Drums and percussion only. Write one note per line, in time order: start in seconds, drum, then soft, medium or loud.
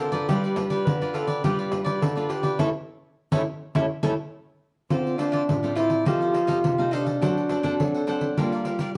0.12 pandeiro medium
0.29 pandeiro medium
0.44 pandeiro soft
0.56 pandeiro medium
0.70 pandeiro medium
0.87 pandeiro medium
1.02 pandeiro soft
1.14 pandeiro medium
1.28 pandeiro medium
1.44 pandeiro medium
1.59 pandeiro soft
1.72 pandeiro medium
1.86 pandeiro medium
2.02 pandeiro medium
2.18 pandeiro soft
2.30 pandeiro medium
2.43 pandeiro medium
2.59 pandeiro medium
3.32 pandeiro loud
3.75 pandeiro medium
4.03 pandeiro medium
4.90 pandeiro medium
5.07 pandeiro soft
5.19 pandeiro medium
5.33 pandeiro soft
5.49 pandeiro medium
5.64 pandeiro soft
5.77 pandeiro medium
5.90 pandeiro medium
6.06 pandeiro medium
6.22 pandeiro soft
6.34 pandeiro medium
6.48 pandeiro medium
6.64 pandeiro medium
6.80 pandeiro soft
6.93 pandeiro medium
7.07 pandeiro medium
7.22 pandeiro medium
7.37 pandeiro soft
7.49 pandeiro medium
7.64 pandeiro medium
7.80 pandeiro medium
7.94 pandeiro soft
8.08 pandeiro medium
8.21 pandeiro medium
8.37 pandeiro medium
8.53 pandeiro soft
8.65 pandeiro medium
8.79 pandeiro medium